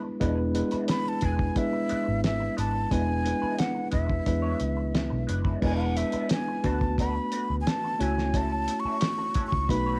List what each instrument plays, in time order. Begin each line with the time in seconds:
Already playing: tine electric piano G#3 B3 D4 E4 B4
0.04 muted clean electric guitar stroke
0.20 picked electric bass E1, tine electric piano G#3 B3 D4 E4 B4, clean electric guitar G#3 D4 E4 B4, kick, closed hi-hat
0.54 tine electric piano G#3 B3 D4 E4 B4, muted clean electric guitar stroke, closed hi-hat
0.71 clean electric guitar G#3 D4 E4 B4, muted picked electric bass stroke, closed hi-hat
0.88 flute B5, muted clean electric guitar stroke, snare, closed hi-hat
1.05 flute A5, muted clean electric guitar stroke
1.21 picked electric bass E1, clean electric guitar G#3 D4 E4 B4, kick, closed hi-hat
1.25 flute G#5
1.38 muted clean electric guitar stroke, kick
1.56 tine electric piano G#3 B3 D4 E4 B4, flute E5, muted clean electric guitar stroke, kick, closed hi-hat
1.73 muted clean electric guitar stroke
1.89 clean electric guitar G#3 D4 E4 B4, muted picked electric bass stroke, closed hi-hat
2.06 picked electric bass G#1, muted clean electric guitar stroke
2.24 flute E5, snare, closed hi-hat
2.40 muted clean electric guitar stroke
2.57 picked electric bass G#1, clean electric guitar G#3 D4 E4 B4, flute A5, closed hi-hat
2.75 muted clean electric guitar stroke
2.90 picked electric bass E1, clean electric guitar G#3 D4 E4 B4, tine electric piano G#3 B3 D4 E4 B4, flute G#5, kick, closed hi-hat
3.24 tine electric piano G#3 B3 D4 E4 B4, muted clean electric guitar stroke, closed hi-hat
3.42 clean electric guitar G#3 D4 E4 B4, muted picked electric bass stroke
3.59 flute F#5, snare, closed hi-hat
3.75 muted clean electric guitar stroke
3.91 picked electric bass E1, clean electric guitar G#3 D4 E4 B4, flute E5, kick, closed hi-hat
4.09 muted clean electric guitar stroke, kick
4.26 picked electric bass E2, tine electric piano G#3 B3 D4 E4 B4, muted clean electric guitar stroke, kick, closed hi-hat
4.42 clean electric guitar G#3 D4 E4 C#5
4.59 picked electric bass C#2, muted clean electric guitar stroke, closed hi-hat
4.77 muted clean electric guitar stroke
4.94 muted clean electric guitar stroke, snare, closed hi-hat
5.10 picked electric bass B1, muted clean electric guitar stroke
5.27 picked electric bass F#1, clean electric guitar G#3 D4 E4 B4, closed hi-hat
5.44 clean electric guitar G#3 D4 E4 B4, kick
5.61 picked electric bass E1, tine electric piano G#3 B3 D4 E4 B4, clean electric guitar G#3 D4 E4 B4, flute G#5, kick, crash
5.77 flute F5
5.81 flute F#5
5.97 flute E5, muted clean electric guitar stroke, closed hi-hat
6.12 clean electric guitar G#3 D4 E4 B4, muted picked electric bass stroke, closed hi-hat
6.29 flute G#5, muted clean electric guitar stroke, snare, closed hi-hat
6.48 muted clean electric guitar stroke
6.63 picked electric bass D2, tine electric piano A3 B3 D4 F#4 B4, clean electric guitar A3 D4 F#4 B4, flute A5, kick, closed hi-hat
6.81 muted clean electric guitar stroke, kick
6.98 clean electric guitar A3 D4 F#4 B4, flute B5, kick, closed hi-hat
7.16 muted clean electric guitar stroke
7.32 clean electric guitar A3 D4 F#4 B4, closed hi-hat
7.50 picked electric bass D2, muted clean electric guitar stroke
7.61 flute G#5
7.67 flute A5, snare, closed hi-hat
7.84 muted clean electric guitar stroke
7.99 picked electric bass C#2, clean electric guitar F#3 C#4 E4 A4, tine electric piano A3 C#4 E4 F#4 C#5, flute G#5, closed hi-hat
8.18 muted clean electric guitar stroke, snare
8.34 clean electric guitar F#3 C#4 E4 A4, flute A5, kick, closed hi-hat
8.68 muted clean electric guitar stroke, closed hi-hat
8.80 flute C#6
8.85 clean electric guitar F#3 C#4 E4 A4, muted picked electric bass stroke
9.01 muted clean electric guitar stroke, snare, closed hi-hat
9.18 muted clean electric guitar stroke
9.34 clean electric guitar F#3 C#4 E4 A4, muted picked electric bass stroke, kick, closed hi-hat
9.47 flute C#6
9.52 picked electric bass C#2, muted clean electric guitar stroke, kick
9.69 picked electric bass B1, tine electric piano A3 B3 D#4 F#4 B4, flute B5, muted clean electric guitar stroke, kick, closed hi-hat
9.86 clean electric guitar A3 D#4 F#4 C#5